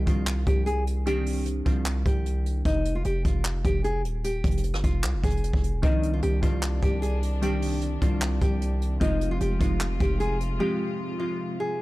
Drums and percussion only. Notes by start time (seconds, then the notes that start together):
0.07 kick, closed hi-hat
0.27 clap, closed hi-hat
0.47 kick, closed hi-hat
0.67 closed hi-hat
0.87 closed hi-hat
1.06 closed hi-hat
1.26 open hi-hat
1.46 closed hi-hat
1.66 kick, closed hi-hat
1.86 clap, closed hi-hat
2.06 kick, closed hi-hat
2.26 closed hi-hat
2.46 closed hi-hat
2.65 kick, closed hi-hat
2.85 closed hi-hat
3.05 closed hi-hat
3.25 kick, closed hi-hat
3.45 clap, closed hi-hat
3.65 kick, closed hi-hat
3.85 closed hi-hat
4.05 closed hi-hat
4.24 closed hi-hat
4.44 kick, closed hi-hat, open hi-hat
4.51 closed hi-hat
4.57 closed hi-hat
4.64 closed hi-hat
4.74 cross-stick
4.84 kick, closed hi-hat
5.04 clap, closed hi-hat
5.24 kick, closed hi-hat
5.30 closed hi-hat
5.37 closed hi-hat
5.43 closed hi-hat
5.53 kick
5.64 closed hi-hat
5.83 kick, closed hi-hat
6.03 closed hi-hat
6.22 closed hi-hat
6.43 kick, closed hi-hat
6.63 clap, closed hi-hat
6.83 kick, closed hi-hat
7.03 closed hi-hat
7.23 closed hi-hat
7.42 closed hi-hat
7.62 open hi-hat
7.81 closed hi-hat
8.02 kick, closed hi-hat
8.22 clap, closed hi-hat
8.42 kick, closed hi-hat
8.61 closed hi-hat
8.82 closed hi-hat
9.01 kick, closed hi-hat
9.21 closed hi-hat
9.40 closed hi-hat
9.61 kick, closed hi-hat
9.81 clap, closed hi-hat
10.00 kick, closed hi-hat
10.20 closed hi-hat
10.40 closed hi-hat